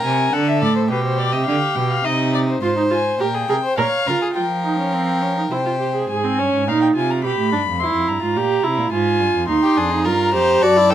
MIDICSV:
0, 0, Header, 1, 5, 480
1, 0, Start_track
1, 0, Key_signature, -4, "minor"
1, 0, Tempo, 576923
1, 750, Time_signature, 3, 2, 24, 8
1, 5556, Tempo, 562852
1, 9194, End_track
2, 0, Start_track
2, 0, Title_t, "Violin"
2, 0, Program_c, 0, 40
2, 37, Note_on_c, 0, 80, 71
2, 274, Note_on_c, 0, 78, 77
2, 287, Note_off_c, 0, 80, 0
2, 398, Note_on_c, 0, 76, 69
2, 411, Note_off_c, 0, 78, 0
2, 508, Note_off_c, 0, 76, 0
2, 513, Note_on_c, 0, 74, 73
2, 625, Note_off_c, 0, 74, 0
2, 630, Note_on_c, 0, 72, 61
2, 678, Note_off_c, 0, 72, 0
2, 752, Note_on_c, 0, 71, 65
2, 862, Note_off_c, 0, 71, 0
2, 867, Note_on_c, 0, 72, 65
2, 983, Note_on_c, 0, 74, 71
2, 995, Note_off_c, 0, 72, 0
2, 1101, Note_on_c, 0, 75, 66
2, 1114, Note_off_c, 0, 74, 0
2, 1213, Note_off_c, 0, 75, 0
2, 1218, Note_on_c, 0, 77, 64
2, 1459, Note_on_c, 0, 79, 70
2, 1472, Note_off_c, 0, 77, 0
2, 1579, Note_off_c, 0, 79, 0
2, 1584, Note_on_c, 0, 77, 70
2, 1702, Note_on_c, 0, 75, 81
2, 1715, Note_off_c, 0, 77, 0
2, 1940, Note_off_c, 0, 75, 0
2, 1946, Note_on_c, 0, 74, 69
2, 1993, Note_off_c, 0, 74, 0
2, 2061, Note_on_c, 0, 72, 57
2, 2175, Note_off_c, 0, 72, 0
2, 2180, Note_on_c, 0, 84, 57
2, 2246, Note_off_c, 0, 84, 0
2, 2422, Note_on_c, 0, 80, 63
2, 2657, Note_off_c, 0, 80, 0
2, 2667, Note_on_c, 0, 79, 62
2, 3138, Note_off_c, 0, 79, 0
2, 3149, Note_on_c, 0, 77, 87
2, 3617, Note_off_c, 0, 77, 0
2, 3623, Note_on_c, 0, 79, 60
2, 4564, Note_off_c, 0, 79, 0
2, 4581, Note_on_c, 0, 79, 59
2, 5062, Note_off_c, 0, 79, 0
2, 5071, Note_on_c, 0, 80, 62
2, 5556, Note_on_c, 0, 77, 66
2, 5569, Note_off_c, 0, 80, 0
2, 5667, Note_off_c, 0, 77, 0
2, 5672, Note_on_c, 0, 79, 59
2, 5722, Note_off_c, 0, 79, 0
2, 5794, Note_on_c, 0, 80, 64
2, 5917, Note_on_c, 0, 82, 58
2, 5930, Note_off_c, 0, 80, 0
2, 6032, Note_off_c, 0, 82, 0
2, 6037, Note_on_c, 0, 83, 72
2, 6511, Note_on_c, 0, 84, 64
2, 6524, Note_off_c, 0, 83, 0
2, 6751, Note_on_c, 0, 82, 65
2, 6764, Note_off_c, 0, 84, 0
2, 7463, Note_off_c, 0, 82, 0
2, 7468, Note_on_c, 0, 80, 75
2, 7939, Note_off_c, 0, 80, 0
2, 7946, Note_on_c, 0, 84, 70
2, 8421, Note_off_c, 0, 84, 0
2, 8430, Note_on_c, 0, 82, 71
2, 8915, Note_on_c, 0, 81, 77
2, 8928, Note_off_c, 0, 82, 0
2, 9150, Note_on_c, 0, 79, 77
2, 9162, Note_off_c, 0, 81, 0
2, 9194, Note_off_c, 0, 79, 0
2, 9194, End_track
3, 0, Start_track
3, 0, Title_t, "Violin"
3, 0, Program_c, 1, 40
3, 0, Note_on_c, 1, 70, 80
3, 277, Note_on_c, 1, 69, 72
3, 290, Note_off_c, 1, 70, 0
3, 752, Note_off_c, 1, 69, 0
3, 755, Note_on_c, 1, 67, 77
3, 1703, Note_on_c, 1, 63, 70
3, 1715, Note_off_c, 1, 67, 0
3, 2180, Note_off_c, 1, 63, 0
3, 2184, Note_on_c, 1, 72, 67
3, 2664, Note_on_c, 1, 70, 67
3, 2677, Note_off_c, 1, 72, 0
3, 2784, Note_on_c, 1, 68, 58
3, 2797, Note_off_c, 1, 70, 0
3, 2904, Note_off_c, 1, 68, 0
3, 2908, Note_on_c, 1, 70, 66
3, 2955, Note_off_c, 1, 70, 0
3, 3026, Note_on_c, 1, 72, 74
3, 3141, Note_off_c, 1, 72, 0
3, 3146, Note_on_c, 1, 73, 75
3, 3387, Note_on_c, 1, 70, 70
3, 3400, Note_off_c, 1, 73, 0
3, 3504, Note_off_c, 1, 70, 0
3, 3509, Note_on_c, 1, 68, 69
3, 3556, Note_off_c, 1, 68, 0
3, 3630, Note_on_c, 1, 70, 62
3, 4588, Note_on_c, 1, 72, 54
3, 4601, Note_off_c, 1, 70, 0
3, 5075, Note_off_c, 1, 72, 0
3, 8073, Note_on_c, 1, 67, 76
3, 8195, Note_on_c, 1, 68, 76
3, 8207, Note_off_c, 1, 67, 0
3, 8430, Note_on_c, 1, 70, 85
3, 8442, Note_off_c, 1, 68, 0
3, 8674, Note_off_c, 1, 70, 0
3, 8677, Note_on_c, 1, 72, 91
3, 8919, Note_on_c, 1, 74, 99
3, 8932, Note_off_c, 1, 72, 0
3, 9160, Note_on_c, 1, 69, 93
3, 9173, Note_off_c, 1, 74, 0
3, 9194, Note_off_c, 1, 69, 0
3, 9194, End_track
4, 0, Start_track
4, 0, Title_t, "Viola"
4, 0, Program_c, 2, 41
4, 2179, Note_on_c, 2, 65, 71
4, 2290, Note_off_c, 2, 65, 0
4, 2298, Note_on_c, 2, 63, 72
4, 2346, Note_off_c, 2, 63, 0
4, 2416, Note_on_c, 2, 65, 63
4, 2483, Note_off_c, 2, 65, 0
4, 2657, Note_on_c, 2, 67, 72
4, 2723, Note_off_c, 2, 67, 0
4, 2897, Note_on_c, 2, 68, 76
4, 2964, Note_off_c, 2, 68, 0
4, 3138, Note_on_c, 2, 70, 90
4, 3205, Note_off_c, 2, 70, 0
4, 3381, Note_on_c, 2, 65, 73
4, 3614, Note_off_c, 2, 65, 0
4, 3619, Note_on_c, 2, 65, 60
4, 3686, Note_off_c, 2, 65, 0
4, 3856, Note_on_c, 2, 63, 57
4, 3973, Note_off_c, 2, 63, 0
4, 3978, Note_on_c, 2, 61, 48
4, 4103, Note_on_c, 2, 60, 59
4, 4116, Note_off_c, 2, 61, 0
4, 4339, Note_on_c, 2, 61, 50
4, 4351, Note_off_c, 2, 60, 0
4, 4458, Note_off_c, 2, 61, 0
4, 4463, Note_on_c, 2, 63, 52
4, 4511, Note_off_c, 2, 63, 0
4, 4582, Note_on_c, 2, 64, 56
4, 4631, Note_off_c, 2, 64, 0
4, 4701, Note_on_c, 2, 65, 53
4, 4751, Note_off_c, 2, 65, 0
4, 4828, Note_on_c, 2, 67, 46
4, 4942, Note_off_c, 2, 67, 0
4, 4947, Note_on_c, 2, 68, 52
4, 5062, Note_off_c, 2, 68, 0
4, 5067, Note_on_c, 2, 68, 63
4, 5192, Note_on_c, 2, 60, 73
4, 5205, Note_off_c, 2, 68, 0
4, 5312, Note_on_c, 2, 61, 75
4, 5325, Note_off_c, 2, 60, 0
4, 5551, Note_off_c, 2, 61, 0
4, 5556, Note_on_c, 2, 63, 79
4, 5789, Note_off_c, 2, 63, 0
4, 5794, Note_on_c, 2, 65, 73
4, 6031, Note_off_c, 2, 65, 0
4, 6039, Note_on_c, 2, 67, 73
4, 6270, Note_off_c, 2, 67, 0
4, 6275, Note_on_c, 2, 62, 60
4, 6343, Note_off_c, 2, 62, 0
4, 6516, Note_on_c, 2, 64, 84
4, 6868, Note_off_c, 2, 64, 0
4, 6873, Note_on_c, 2, 65, 73
4, 6992, Note_on_c, 2, 67, 87
4, 7005, Note_off_c, 2, 65, 0
4, 7227, Note_on_c, 2, 64, 80
4, 7240, Note_off_c, 2, 67, 0
4, 7460, Note_off_c, 2, 64, 0
4, 7465, Note_on_c, 2, 65, 83
4, 7938, Note_off_c, 2, 65, 0
4, 7949, Note_on_c, 2, 63, 75
4, 8190, Note_on_c, 2, 62, 69
4, 8203, Note_off_c, 2, 63, 0
4, 8310, Note_on_c, 2, 63, 70
4, 8323, Note_off_c, 2, 62, 0
4, 8430, Note_on_c, 2, 65, 80
4, 8443, Note_off_c, 2, 63, 0
4, 8674, Note_off_c, 2, 65, 0
4, 8679, Note_on_c, 2, 67, 76
4, 8919, Note_on_c, 2, 66, 70
4, 8932, Note_off_c, 2, 67, 0
4, 9040, Note_on_c, 2, 64, 68
4, 9053, Note_off_c, 2, 66, 0
4, 9157, Note_on_c, 2, 62, 67
4, 9169, Note_off_c, 2, 64, 0
4, 9194, Note_off_c, 2, 62, 0
4, 9194, End_track
5, 0, Start_track
5, 0, Title_t, "Cello"
5, 0, Program_c, 3, 42
5, 37, Note_on_c, 3, 48, 75
5, 269, Note_off_c, 3, 48, 0
5, 274, Note_on_c, 3, 50, 86
5, 514, Note_on_c, 3, 45, 78
5, 526, Note_off_c, 3, 50, 0
5, 750, Note_on_c, 3, 47, 79
5, 762, Note_off_c, 3, 45, 0
5, 1106, Note_on_c, 3, 48, 76
5, 1118, Note_off_c, 3, 47, 0
5, 1221, Note_off_c, 3, 48, 0
5, 1226, Note_on_c, 3, 50, 83
5, 1292, Note_off_c, 3, 50, 0
5, 1464, Note_on_c, 3, 47, 76
5, 1696, Note_off_c, 3, 47, 0
5, 1704, Note_on_c, 3, 48, 77
5, 2171, Note_off_c, 3, 48, 0
5, 2181, Note_on_c, 3, 44, 56
5, 2628, Note_off_c, 3, 44, 0
5, 2662, Note_on_c, 3, 46, 59
5, 2898, Note_off_c, 3, 46, 0
5, 2905, Note_on_c, 3, 48, 55
5, 2971, Note_off_c, 3, 48, 0
5, 3145, Note_on_c, 3, 46, 74
5, 3211, Note_off_c, 3, 46, 0
5, 3385, Note_on_c, 3, 49, 63
5, 3452, Note_off_c, 3, 49, 0
5, 3624, Note_on_c, 3, 53, 60
5, 4564, Note_off_c, 3, 53, 0
5, 4583, Note_on_c, 3, 48, 51
5, 5063, Note_off_c, 3, 48, 0
5, 5073, Note_on_c, 3, 44, 59
5, 5316, Note_on_c, 3, 43, 58
5, 5329, Note_off_c, 3, 44, 0
5, 5432, Note_off_c, 3, 43, 0
5, 5437, Note_on_c, 3, 44, 58
5, 5557, Note_on_c, 3, 46, 65
5, 5570, Note_off_c, 3, 44, 0
5, 5793, Note_off_c, 3, 46, 0
5, 5798, Note_on_c, 3, 48, 57
5, 6039, Note_on_c, 3, 47, 63
5, 6052, Note_off_c, 3, 48, 0
5, 6151, Note_off_c, 3, 47, 0
5, 6156, Note_on_c, 3, 45, 63
5, 6278, Note_on_c, 3, 43, 55
5, 6291, Note_off_c, 3, 45, 0
5, 6394, Note_off_c, 3, 43, 0
5, 6399, Note_on_c, 3, 41, 62
5, 6516, Note_on_c, 3, 40, 58
5, 6528, Note_off_c, 3, 41, 0
5, 6630, Note_off_c, 3, 40, 0
5, 6635, Note_on_c, 3, 41, 52
5, 6753, Note_off_c, 3, 41, 0
5, 6757, Note_on_c, 3, 43, 57
5, 6805, Note_off_c, 3, 43, 0
5, 6874, Note_on_c, 3, 44, 55
5, 6991, Note_on_c, 3, 46, 60
5, 7004, Note_off_c, 3, 44, 0
5, 7226, Note_off_c, 3, 46, 0
5, 7231, Note_on_c, 3, 48, 56
5, 7349, Note_on_c, 3, 46, 66
5, 7362, Note_off_c, 3, 48, 0
5, 7464, Note_off_c, 3, 46, 0
5, 7469, Note_on_c, 3, 44, 67
5, 7709, Note_on_c, 3, 43, 61
5, 7721, Note_off_c, 3, 44, 0
5, 7827, Note_off_c, 3, 43, 0
5, 7832, Note_on_c, 3, 41, 65
5, 7949, Note_off_c, 3, 41, 0
5, 7953, Note_on_c, 3, 39, 64
5, 8022, Note_off_c, 3, 39, 0
5, 8194, Note_on_c, 3, 41, 62
5, 8436, Note_on_c, 3, 43, 61
5, 8448, Note_off_c, 3, 41, 0
5, 8678, Note_on_c, 3, 41, 60
5, 8690, Note_off_c, 3, 43, 0
5, 8918, Note_off_c, 3, 41, 0
5, 8922, Note_on_c, 3, 42, 71
5, 9194, Note_off_c, 3, 42, 0
5, 9194, End_track
0, 0, End_of_file